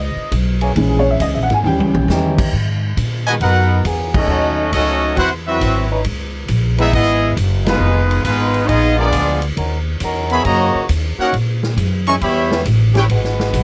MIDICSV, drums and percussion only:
0, 0, Header, 1, 2, 480
1, 0, Start_track
1, 0, Key_signature, 5, "minor"
1, 0, Tempo, 440529
1, 829, Time_signature, 4, 2, 24, 8
1, 14851, End_track
2, 0, Start_track
2, 0, Title_t, "Drums"
2, 346, Note_on_c, 9, 36, 28
2, 346, Note_on_c, 9, 44, 63
2, 346, Note_on_c, 9, 51, 88
2, 455, Note_off_c, 9, 36, 0
2, 455, Note_off_c, 9, 44, 0
2, 455, Note_off_c, 9, 51, 0
2, 665, Note_on_c, 9, 51, 60
2, 774, Note_off_c, 9, 51, 0
2, 826, Note_on_c, 9, 51, 74
2, 828, Note_on_c, 9, 36, 27
2, 935, Note_off_c, 9, 51, 0
2, 937, Note_off_c, 9, 36, 0
2, 1309, Note_on_c, 9, 44, 67
2, 1309, Note_on_c, 9, 51, 85
2, 1310, Note_on_c, 9, 36, 27
2, 1418, Note_off_c, 9, 44, 0
2, 1418, Note_off_c, 9, 51, 0
2, 1419, Note_off_c, 9, 36, 0
2, 1634, Note_on_c, 9, 51, 64
2, 1639, Note_on_c, 9, 38, 52
2, 1743, Note_off_c, 9, 51, 0
2, 1748, Note_off_c, 9, 38, 0
2, 1964, Note_on_c, 9, 48, 75
2, 2073, Note_off_c, 9, 48, 0
2, 2120, Note_on_c, 9, 47, 100
2, 2229, Note_off_c, 9, 47, 0
2, 2284, Note_on_c, 9, 44, 62
2, 2288, Note_on_c, 9, 38, 64
2, 2393, Note_off_c, 9, 44, 0
2, 2397, Note_off_c, 9, 38, 0
2, 2600, Note_on_c, 9, 36, 89
2, 2605, Note_on_c, 9, 49, 106
2, 2709, Note_off_c, 9, 36, 0
2, 2714, Note_off_c, 9, 49, 0
2, 2761, Note_on_c, 9, 36, 22
2, 2870, Note_off_c, 9, 36, 0
2, 3240, Note_on_c, 9, 36, 21
2, 3241, Note_on_c, 9, 44, 67
2, 3241, Note_on_c, 9, 51, 80
2, 3349, Note_off_c, 9, 36, 0
2, 3350, Note_off_c, 9, 44, 0
2, 3350, Note_off_c, 9, 51, 0
2, 3714, Note_on_c, 9, 51, 64
2, 3717, Note_on_c, 9, 36, 21
2, 3823, Note_off_c, 9, 51, 0
2, 3826, Note_off_c, 9, 36, 0
2, 4194, Note_on_c, 9, 44, 63
2, 4194, Note_on_c, 9, 51, 88
2, 4197, Note_on_c, 9, 36, 30
2, 4303, Note_off_c, 9, 44, 0
2, 4303, Note_off_c, 9, 51, 0
2, 4306, Note_off_c, 9, 36, 0
2, 4517, Note_on_c, 9, 36, 102
2, 4517, Note_on_c, 9, 49, 98
2, 4626, Note_off_c, 9, 36, 0
2, 4626, Note_off_c, 9, 49, 0
2, 5149, Note_on_c, 9, 44, 52
2, 5149, Note_on_c, 9, 51, 86
2, 5154, Note_on_c, 9, 36, 21
2, 5258, Note_off_c, 9, 44, 0
2, 5258, Note_off_c, 9, 51, 0
2, 5263, Note_off_c, 9, 36, 0
2, 5632, Note_on_c, 9, 51, 67
2, 5635, Note_on_c, 9, 36, 22
2, 5741, Note_off_c, 9, 51, 0
2, 5744, Note_off_c, 9, 36, 0
2, 6113, Note_on_c, 9, 36, 27
2, 6114, Note_on_c, 9, 44, 57
2, 6114, Note_on_c, 9, 51, 88
2, 6222, Note_off_c, 9, 36, 0
2, 6223, Note_off_c, 9, 44, 0
2, 6223, Note_off_c, 9, 51, 0
2, 6585, Note_on_c, 9, 51, 77
2, 6591, Note_on_c, 9, 36, 27
2, 6694, Note_off_c, 9, 51, 0
2, 6700, Note_off_c, 9, 36, 0
2, 7063, Note_on_c, 9, 44, 58
2, 7063, Note_on_c, 9, 51, 80
2, 7071, Note_on_c, 9, 36, 26
2, 7172, Note_off_c, 9, 44, 0
2, 7172, Note_off_c, 9, 51, 0
2, 7180, Note_off_c, 9, 36, 0
2, 7390, Note_on_c, 9, 51, 59
2, 7499, Note_off_c, 9, 51, 0
2, 7552, Note_on_c, 9, 36, 27
2, 7552, Note_on_c, 9, 51, 75
2, 7661, Note_off_c, 9, 36, 0
2, 7661, Note_off_c, 9, 51, 0
2, 8030, Note_on_c, 9, 36, 25
2, 8031, Note_on_c, 9, 44, 68
2, 8031, Note_on_c, 9, 51, 89
2, 8139, Note_off_c, 9, 36, 0
2, 8140, Note_off_c, 9, 44, 0
2, 8140, Note_off_c, 9, 51, 0
2, 8350, Note_on_c, 9, 51, 80
2, 8355, Note_on_c, 9, 38, 100
2, 8459, Note_off_c, 9, 51, 0
2, 8463, Note_off_c, 9, 38, 0
2, 8835, Note_on_c, 9, 51, 61
2, 8944, Note_off_c, 9, 51, 0
2, 8985, Note_on_c, 9, 44, 61
2, 8985, Note_on_c, 9, 51, 87
2, 8990, Note_on_c, 9, 36, 28
2, 9094, Note_off_c, 9, 44, 0
2, 9094, Note_off_c, 9, 51, 0
2, 9099, Note_off_c, 9, 36, 0
2, 9307, Note_on_c, 9, 51, 57
2, 9416, Note_off_c, 9, 51, 0
2, 9467, Note_on_c, 9, 51, 74
2, 9468, Note_on_c, 9, 36, 28
2, 9576, Note_off_c, 9, 51, 0
2, 9577, Note_off_c, 9, 36, 0
2, 9942, Note_on_c, 9, 44, 70
2, 9942, Note_on_c, 9, 51, 95
2, 9948, Note_on_c, 9, 36, 29
2, 10051, Note_off_c, 9, 44, 0
2, 10051, Note_off_c, 9, 51, 0
2, 10057, Note_off_c, 9, 36, 0
2, 10262, Note_on_c, 9, 51, 60
2, 10371, Note_off_c, 9, 51, 0
2, 10428, Note_on_c, 9, 51, 76
2, 10429, Note_on_c, 9, 36, 29
2, 10537, Note_off_c, 9, 51, 0
2, 10538, Note_off_c, 9, 36, 0
2, 10897, Note_on_c, 9, 44, 67
2, 10897, Note_on_c, 9, 51, 81
2, 10908, Note_on_c, 9, 36, 25
2, 11006, Note_off_c, 9, 44, 0
2, 11006, Note_off_c, 9, 51, 0
2, 11017, Note_off_c, 9, 36, 0
2, 11219, Note_on_c, 9, 51, 59
2, 11328, Note_off_c, 9, 51, 0
2, 11384, Note_on_c, 9, 51, 66
2, 11388, Note_on_c, 9, 36, 23
2, 11493, Note_off_c, 9, 51, 0
2, 11497, Note_off_c, 9, 36, 0
2, 11866, Note_on_c, 9, 44, 74
2, 11866, Note_on_c, 9, 51, 89
2, 11871, Note_on_c, 9, 36, 24
2, 11975, Note_off_c, 9, 44, 0
2, 11975, Note_off_c, 9, 51, 0
2, 11980, Note_off_c, 9, 36, 0
2, 12350, Note_on_c, 9, 36, 25
2, 12352, Note_on_c, 9, 51, 72
2, 12459, Note_off_c, 9, 36, 0
2, 12461, Note_off_c, 9, 51, 0
2, 12675, Note_on_c, 9, 38, 51
2, 12784, Note_off_c, 9, 38, 0
2, 12830, Note_on_c, 9, 36, 27
2, 12830, Note_on_c, 9, 44, 64
2, 12830, Note_on_c, 9, 51, 76
2, 12939, Note_off_c, 9, 36, 0
2, 12939, Note_off_c, 9, 44, 0
2, 12939, Note_off_c, 9, 51, 0
2, 13147, Note_on_c, 9, 51, 60
2, 13256, Note_off_c, 9, 51, 0
2, 13307, Note_on_c, 9, 51, 73
2, 13308, Note_on_c, 9, 36, 19
2, 13416, Note_off_c, 9, 51, 0
2, 13417, Note_off_c, 9, 36, 0
2, 13633, Note_on_c, 9, 38, 69
2, 13742, Note_off_c, 9, 38, 0
2, 13788, Note_on_c, 9, 44, 67
2, 13788, Note_on_c, 9, 51, 83
2, 13790, Note_on_c, 9, 36, 23
2, 13897, Note_off_c, 9, 44, 0
2, 13897, Note_off_c, 9, 51, 0
2, 13899, Note_off_c, 9, 36, 0
2, 14110, Note_on_c, 9, 51, 58
2, 14114, Note_on_c, 9, 38, 55
2, 14219, Note_off_c, 9, 51, 0
2, 14223, Note_off_c, 9, 38, 0
2, 14268, Note_on_c, 9, 51, 77
2, 14270, Note_on_c, 9, 36, 20
2, 14377, Note_off_c, 9, 51, 0
2, 14379, Note_off_c, 9, 36, 0
2, 14428, Note_on_c, 9, 38, 33
2, 14537, Note_off_c, 9, 38, 0
2, 14596, Note_on_c, 9, 38, 57
2, 14705, Note_off_c, 9, 38, 0
2, 14748, Note_on_c, 9, 36, 22
2, 14748, Note_on_c, 9, 44, 65
2, 14748, Note_on_c, 9, 51, 79
2, 14851, Note_off_c, 9, 36, 0
2, 14851, Note_off_c, 9, 44, 0
2, 14851, Note_off_c, 9, 51, 0
2, 14851, End_track
0, 0, End_of_file